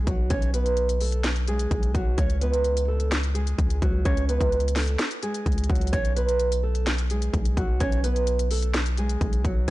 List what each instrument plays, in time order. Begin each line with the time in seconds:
0.07 808-style bass B1, nylon-string guitar F#3 F#4, kick, closed hi-hat
0.30 808-style bass B1, nylon-string guitar C#4 C#5, kick, closed hi-hat
0.42 closed hi-hat
0.54 nylon-string guitar B3 B4, closed hi-hat
0.66 closed hi-hat
0.77 closed hi-hat
0.89 closed hi-hat
1.01 nylon-string guitar A3 A4, open hi-hat
1.12 closed hi-hat
1.24 snare, closed hi-hat
1.36 closed hi-hat
1.48 nylon-string guitar G#3 G#4, closed hi-hat
1.59 closed hi-hat
1.71 808-style bass B1, kick, closed hi-hat
1.83 closed hi-hat
1.95 808-style bass B1, nylon-string guitar F#3 F#4, kick, closed hi-hat
2.17 808-style bass C#2, nylon-string guitar C#4 C#5, kick, closed hi-hat
2.30 closed hi-hat
2.41 nylon-string guitar B3 B4, closed hi-hat
2.54 closed hi-hat
2.64 closed hi-hat
2.77 closed hi-hat
2.88 nylon-string guitar A3 A4
3.00 closed hi-hat
3.12 snare, closed hi-hat
3.23 closed hi-hat
3.35 nylon-string guitar G#3 G#4, closed hi-hat
3.47 closed hi-hat
3.58 808-style bass C#2, kick, closed hi-hat
3.70 closed hi-hat
3.82 808-style bass C#2, nylon-string guitar F#3 F#4, kick, closed hi-hat
4.05 808-style bass C#2, nylon-string guitar C#4 C#5, kick, closed hi-hat
4.17 closed hi-hat
4.29 nylon-string guitar B3 B4, closed hi-hat
4.41 808-style bass C#2, kick, closed hi-hat
4.52 closed hi-hat
4.60 closed hi-hat
4.68 closed hi-hat
4.76 nylon-string guitar A3 A4, snare, open hi-hat
4.87 closed hi-hat
4.99 snare, closed hi-hat
5.11 closed hi-hat
5.23 nylon-string guitar G#3 G#4, closed hi-hat
5.34 closed hi-hat
5.46 808-style bass C#2, kick, closed hi-hat
5.52 closed hi-hat
5.58 closed hi-hat
5.64 closed hi-hat
5.69 808-style bass C#2, nylon-string guitar F#3 F#4, kick, closed hi-hat
5.75 closed hi-hat
5.81 closed hi-hat
5.87 closed hi-hat
5.93 808-style bass B1, nylon-string guitar C#4 C#5, kick, closed hi-hat
6.05 closed hi-hat
6.16 nylon-string guitar B3 B4, closed hi-hat
6.29 closed hi-hat
6.40 closed hi-hat
6.52 closed hi-hat
6.63 nylon-string guitar A3 A4
6.75 closed hi-hat
6.87 snare, closed hi-hat
6.98 closed hi-hat
7.10 nylon-string guitar G#3 G#4, closed hi-hat
7.22 closed hi-hat
7.34 808-style bass B1, kick, closed hi-hat
7.45 closed hi-hat
7.57 808-style bass B1, nylon-string guitar F#3 F#4, kick, closed hi-hat
7.80 808-style bass B1, nylon-string guitar C#4 C#5, kick, closed hi-hat
7.92 closed hi-hat
8.04 nylon-string guitar B3 B4, closed hi-hat
8.16 closed hi-hat
8.27 closed hi-hat
8.39 closed hi-hat
8.51 nylon-string guitar A3 A4, open hi-hat
8.62 closed hi-hat
8.74 snare, closed hi-hat
8.86 closed hi-hat
8.98 nylon-string guitar G#3 G#4, closed hi-hat
9.09 closed hi-hat
9.21 808-style bass B1, kick, closed hi-hat
9.33 closed hi-hat
9.45 808-style bass B1, nylon-string guitar F#3 F#4, kick, closed hi-hat